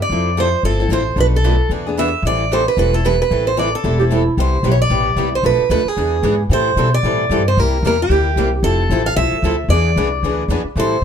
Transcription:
0.02 D5
0.09 F2 F3 A3 C4 E4 A4
0.38 F3 A3 C4 E4 A4 C5
0.63 G1 F3 A3 C4 E4 A4
0.80 C4 E4 A4
0.89 A1 F3 A3 C4 E4 A4
0.93 C5
1.16 B1 B2 F3 A3 D4 A4 B4
1.20 B4
1.36 A4
1.44 B2 F3 A3 D4 A4 B4
1.69 E2 E3 B3 D4 G#4 B4
1.86 B3 D4 G#4
1.97 E3 B3 D4 G#4 B4 E5
2.22 A1 E3 G3 C4 E4 A4
2.27 D5
2.51 E3 G3 C4 E4 A4 C5
2.68 B4
2.77 E1 E3 G3 C4 E4 A4 B4
2.93 C4 E4 A4
3.05 E3 G3 C4 E4 A4 B4
3.22 B4
3.30 A1 E3 G3 C4 E4 A4
3.47 C5
3.58 E3 G3 C4 E4 A4 D5
3.75 A4
3.84 E1 E3 G3 C4 E4 A4
3.99 C4 E4 G4 A4
4.11 E3 G3 C4 E4 A4
4.37 C2 C3 G3 B3 E4 G4 C5
4.63 B1 C3 G3 B3 E4 G4
4.72 C#5
4.82 D5
4.90 A1 C3 G3 B3 E4 G4
5.16 C2 C3 G3 B3 E4 G4
5.35 C5
5.43 B1 B2 F3 A3 D4 A4 B4
5.58 muted upright bass stroke
5.69 D2 B2 F3 A3 D4 A4 B4
5.85 G#4, muted upright bass stroke
5.97 E2 E3 B3 D4 G#4 B4
6.23 G#2 E3 B3 D4 G#4 B4
6.49 A2 E3 G3 C4 E4 A4 C5
6.76 B2 E3 G3 C4 E4 A4
6.94 D5
7.03 A2 E3 G3 C4 E4 A4
7.29 G2 E3 G3 C4 E4 A4
7.48 C5
7.57 C2 C3 G3 A#3 E4 G4 A#4
7.83 E2 C3 G3 A#3 E4 G4
7.87 A#4
8.02 G4
8.09 D2 C3 G3 A#3 E4 G4
8.36 C2 C3 G3 A#3 E4 G4
8.63 F1 F3 A3 C4 E4 A4
8.89 A1 F3 A3 C4 E4 A4
9.06 F5
9.16 C2 F3 A3 C4 E4 A4 E5
9.32 muted upright bass stroke
9.42 D2 F3 A3 C4 E4 A4
9.68 E2 E3 B3 D4 G#4 B4 D5
9.96 C2 E3 B3 D4 G#4 B4
10.23 D2 E3 B3 D4 G#4 B4
10.48 E2 E3 B3 D4 G#4 B4
10.64 muted upright bass stroke
10.76 A2 E3 G3 C4 E4 A4 C5

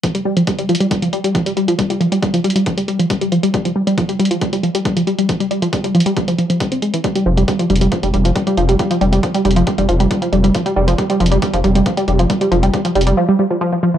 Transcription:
0.04 F3, kick, closed hi-hat
0.15 G3, closed hi-hat
0.25 G3
0.37 F3, closed hi-hat
0.47 G3, kick, closed hi-hat
0.59 G3, closed hi-hat
0.69 F3, closed hi-hat
0.75 closed hi-hat
0.81 G3, closed hi-hat
0.91 G3, kick, closed hi-hat
1.02 F3, closed hi-hat
1.13 G3, closed hi-hat
1.24 G3, closed hi-hat
1.35 F3, kick, closed hi-hat
1.46 G3, closed hi-hat
1.57 G3, closed hi-hat
1.68 F3, closed hi-hat
1.79 G3, kick, closed hi-hat
1.90 G3, closed hi-hat
2.01 F3, closed hi-hat
2.12 G3, closed hi-hat
2.22 G3, kick, closed hi-hat
2.34 F3, closed hi-hat
2.44 G3, closed hi-hat
2.50 closed hi-hat
2.56 G3, closed hi-hat
2.66 F3, kick, closed hi-hat
2.77 G3, closed hi-hat
2.88 G3, closed hi-hat
2.99 F3, closed hi-hat
3.10 G3, kick, closed hi-hat
3.21 G3, closed hi-hat
3.32 F3, closed hi-hat
3.43 G3, closed hi-hat
3.54 G3, kick, closed hi-hat
3.65 F3, closed hi-hat
3.76 G3
3.87 G3, closed hi-hat
3.98 F3, kick, closed hi-hat
4.09 G3, closed hi-hat
4.19 G3, closed hi-hat
4.25 closed hi-hat
4.31 F3, closed hi-hat
4.41 G3, kick, closed hi-hat
4.53 G3, closed hi-hat
4.63 F3, closed hi-hat
4.75 G3, closed hi-hat
4.85 G3, kick, closed hi-hat
4.97 F3, closed hi-hat
5.07 G3, closed hi-hat
5.18 G3, closed hi-hat
5.29 F3, kick, closed hi-hat
5.40 G3, closed hi-hat
5.51 G3, closed hi-hat
5.62 F3, closed hi-hat
5.73 G3, kick, closed hi-hat
5.84 G3, closed hi-hat
5.95 F3, closed hi-hat
6.00 closed hi-hat
6.06 G3, closed hi-hat
6.17 G3, kick, closed hi-hat
6.28 F3, closed hi-hat
6.38 F3, closed hi-hat
6.50 F3, closed hi-hat
6.60 G3, kick, closed hi-hat
6.72 C4, closed hi-hat
6.82 G#3, closed hi-hat
6.94 E3, closed hi-hat
7.04 G3, kick, closed hi-hat
7.16 G3, closed hi-hat
7.26 F1 F3
7.37 G3, closed hi-hat
7.48 G3, kick, closed hi-hat
7.59 F3, closed hi-hat
7.70 F1 G3, closed hi-hat
7.76 closed hi-hat
7.81 G3, closed hi-hat
7.92 F3, kick, closed hi-hat
8.03 F1 G3, closed hi-hat
8.14 F1 G3, closed hi-hat
8.25 F3, closed hi-hat
8.36 G3, kick, closed hi-hat
8.47 G3, closed hi-hat
8.57 F1 F3, closed hi-hat
8.69 G3, closed hi-hat
8.79 G3, kick, closed hi-hat
8.91 F3, closed hi-hat
9.01 F1 G3, closed hi-hat
9.13 G3, closed hi-hat
9.23 F3, kick, closed hi-hat
9.34 G3, closed hi-hat
9.45 F1 G3, closed hi-hat
9.51 closed hi-hat
9.56 F3, closed hi-hat
9.67 G3, kick, closed hi-hat
9.78 F1 G3, closed hi-hat
9.89 F1 F3, closed hi-hat
10.00 G3, closed hi-hat
10.11 G3, kick, closed hi-hat
10.22 F3, closed hi-hat
10.33 F1 G3, closed hi-hat
10.44 G3, closed hi-hat
10.54 F3, kick, closed hi-hat
10.66 G3, closed hi-hat
10.76 F1 G3
10.88 F3, closed hi-hat
10.98 G3, kick, closed hi-hat
11.10 G3, closed hi-hat
11.20 F1 F3, closed hi-hat
11.26 closed hi-hat
11.32 G3, closed hi-hat
11.42 G3, kick, closed hi-hat
11.53 F1 F3, closed hi-hat
11.64 F1 G3, closed hi-hat
11.75 G3, closed hi-hat
11.86 F3, kick, closed hi-hat
11.97 G3, closed hi-hat
12.08 F1 G3, closed hi-hat
12.19 F3, closed hi-hat
12.30 G3, kick, closed hi-hat
12.41 G3, closed hi-hat
12.52 F1 F3, closed hi-hat
12.63 G3, closed hi-hat
12.73 G3, kick, closed hi-hat
12.85 F3, closed hi-hat
12.95 F1 G3, closed hi-hat
13.01 closed hi-hat
13.07 G3, closed hi-hat
13.17 F3
13.29 G3
13.39 G3
13.51 F3
13.61 F3
13.72 F3
13.83 F3
13.94 E3

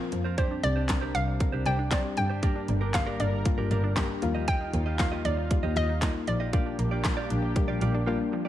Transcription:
Already playing: F3 A#3 C4 F4
0.12 F2 F3, muted clean electric guitar stroke, closed hi-hat
0.24 F4 A#4 C5
0.37 C3 G3 C4 D4 G4 C5 D5, kick, closed hi-hat
0.51 D4
0.63 C2 C4 D5, muted clean electric guitar stroke, closed hi-hat
0.76 D4 G4 C5
0.89 D3 G3 C4 D4 A#4, muted clean electric guitar stroke, kick, snare, clap, closed hi-hat
1.01 D4 G4 C5 D5
1.14 C2 D4 F5, muted clean electric guitar stroke, closed hi-hat
1.27 muted clean electric guitar stroke
1.40 G3 C4 D4 A#4, muted clean electric guitar stroke, kick, closed hi-hat
1.52 C2 D4 G4 C5
1.65 C2 D4 G4 C5 D5 G5, closed hi-hat
1.78 D4, muted clean electric guitar stroke
1.91 G3 C4 D4 G4 C5 D5, kick, snare, clap, closed hi-hat
2.04 muted clean electric guitar stroke
2.17 G2 D3 G5, muted clean electric guitar stroke, closed hi-hat
2.30 D4 G4 C5
2.42 G3 A#3 D4 G4 A#4 D5, kick, closed hi-hat
2.56 D4
2.68 G1 A#3, muted clean electric guitar stroke, closed hi-hat
2.81 D4 G4 A#4
2.94 D3 G3 A#3 D4 G4 F5, kick, snare, clap, closed hi-hat
3.06 D4 G4 A#4 D5
3.20 G1 D4 D5, closed hi-hat
3.32 muted clean electric guitar stroke
3.45 G3 A#3 D4 F4, muted clean electric guitar stroke, kick, closed hi-hat
3.58 G1 D4 G4 A#4
3.71 G1 D4 G4 A#4 D5, closed hi-hat
3.83 D4, muted clean electric guitar stroke
3.96 G3 A#3 D4 G4 A#4, kick, snare, clap, closed hi-hat
4.09 muted clean electric guitar stroke
4.22 D#2 F3 G3 A#3 D#4 F4, muted clean electric guitar stroke, closed hi-hat
4.35 F4 G4 D#5
4.47 F4 G4 D#5 G5, kick, closed hi-hat
4.61 D#4
4.73 D#2 A#3, closed hi-hat
4.86 F4 G4 D#5
4.99 F3 G3 A#3 D#4 F4 F5, kick, snare, clap, closed hi-hat
5.12 F4 G4 D#5
5.25 D#2 D#4 D5, muted clean electric guitar stroke, closed hi-hat
5.37 muted clean electric guitar stroke
5.50 G3 A#3 D#4 F4, muted clean electric guitar stroke, kick, closed hi-hat
5.63 D#2 F4 G4 D#5
5.76 D#2 F4 G4 D#5, closed hi-hat
5.89 D#4, muted clean electric guitar stroke
6.01 G3 A#3 D#4 F4 G4 D#5, kick, snare, clap, closed hi-hat
6.14 muted clean electric guitar stroke
6.27 A#1 F3 D5, muted clean electric guitar stroke, closed hi-hat
6.40 F4 G4 D#5
6.53 G3 A#3 D4 F4 G4 D5, kick, closed hi-hat
6.66 D4
6.78 A#1 A#3, muted clean electric guitar stroke, closed hi-hat
6.91 F4 G4 D5
7.04 F3 G3 A#3 D4 F4, kick, snare, clap, closed hi-hat
7.17 F4 G4 D5
7.30 A#1 D4, closed hi-hat
7.43 muted clean electric guitar stroke
7.55 G3 A#3 D4 G4, muted clean electric guitar stroke, kick, closed hi-hat
7.68 A#1 F4 G4 D5
7.81 A#1 F4 G4 D5, closed hi-hat
7.94 D4, muted clean electric guitar stroke
8.06 G3 A#3 D4 F4 G4 D5
8.19 muted clean electric guitar stroke
8.32 F3, muted clean electric guitar stroke
8.45 D5

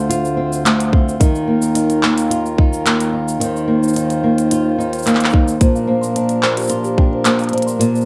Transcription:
Already playing: D2 D3 A3 C4 F4 C5
0.09 F4, closed hi-hat, shaker
0.25 shaker
0.37 C4
0.53 shaker
0.65 A3, clap, closed hi-hat, shaker
0.80 closed hi-hat, shaker
0.92 C4, kick
1.09 shaker
1.20 D#2 D#3 A#4, kick, closed hi-hat, shaker
1.35 shaker
1.48 A#3
1.62 shaker
1.75 D#4, closed hi-hat, shaker
1.90 closed hi-hat, shaker
2.03 A#3, clap
2.18 closed hi-hat, shaker
2.30 F4, closed hi-hat, shaker
2.46 shaker
2.58 D#4, kick
2.73 shaker
2.85 A#3, clap, closed hi-hat, shaker
3.00 closed hi-hat, shaker
3.13 D#4
3.28 shaker
3.40 D#3 C5, closed hi-hat, shaker
3.56 shaker
3.68 A#3
3.83 shaker
3.88 shaker
3.93 D#4, closed hi-hat, shaker
3.97 shaker
4.10 closed hi-hat, shaker
4.23 A#3
4.38 closed hi-hat, shaker
4.51 F4, closed hi-hat, shaker
4.78 D#4, shaker
4.93 closed hi-hat, shaker
4.98 shaker
5.03 A#3, clap, closed hi-hat, shaker
5.08 shaker
5.15 clap
5.20 closed hi-hat, shaker
5.24 clap, shaker
5.30 D#4, kick, shaker
5.48 shaker
5.60 A#2 F3 D4 A#4 C5, kick, closed hi-hat, shaker
5.75 F5, shaker
5.87 A#3 C5
6.02 C6, shaker
6.15 D4 A#4, closed hi-hat, shaker
6.29 C5, closed hi-hat, shaker
6.42 A#3 C5, clap
6.57 G4, closed hi-hat, shaker
6.62 shaker
6.64 shaker
6.67 F4, closed hi-hat, shaker
6.71 C6, shaker
6.84 G4, shaker
6.98 D4 G5, kick
7.13 C5
7.25 A#3 C5, clap, closed hi-hat, shaker
7.39 F5, closed hi-hat, shaker
7.44 closed hi-hat
7.49 D4, closed hi-hat
7.53 C5, closed hi-hat
7.58 closed hi-hat
7.62 closed hi-hat
7.67 C6, shaker
7.79 A#2 A#4, closed hi-hat, shaker
7.94 C5, shaker
8.01 shaker

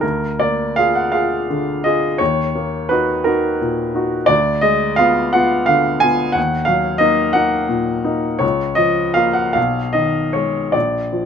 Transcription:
0.01 D2 A#4
0.40 A#3 D5
0.76 F4 G#4 F5
0.95 F#5
1.12 F4 G#4 F5
1.50 D3
1.84 F4 G#4 D#5
2.18 D#2 C#5
2.55 A#3
2.89 D#4 F#4 B4
3.24 D#4 F#4 A#4
3.61 A#2
3.95 D#4 F#4
4.26 D2 D5
4.61 G#3 D#5
4.96 B3 F4 F5
5.33 B3 F4 F#5
5.66 D3 F5
6.00 B3 F4 G#5
6.32 D#2 F#5
6.65 F#3 F5
6.98 A#3 D#4 D#5
7.33 A#3 D#4 F#5
7.69 A#2
8.04 A#3 D#4
8.39 C#2 C#5
8.75 F3 D#5
9.14 A#3 F4 F5
9.33 F#5
9.53 B1 F5
9.93 D#3 D#5
10.33 G#3 G#4 C#5
10.72 A#1 D5
11.13 F3

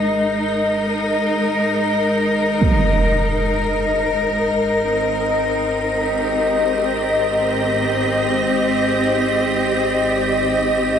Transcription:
Already playing: G#1 G#2 G#3 D#4 A#4 D#5
2.61 impact
4.87 C4
5.96 G4
6.32 D#5

